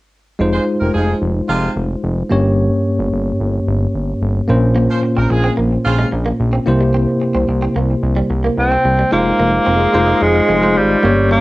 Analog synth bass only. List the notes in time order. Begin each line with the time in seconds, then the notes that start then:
0.40 F1
0.81 F1
0.95 F1
1.22 F1
1.49 F1
1.76 F1
2.03 F1
2.31 G1
2.99 G1
3.13 G1
3.40 G1
3.68 G1
3.95 G1
4.22 G1
4.49 A#1
5.17 A#1
5.31 A#1
5.58 A#1
5.86 A#1
6.13 A#1
6.40 A#1
6.67 C2
7.35 C2
7.49 C2
7.76 C2
8.03 C2
8.30 C2
8.58 C2
8.85 C2
9.13 F1
9.40 F1
9.67 F1
9.94 F1
10.22 F1
10.49 F1
10.76 G#1
11.04 G1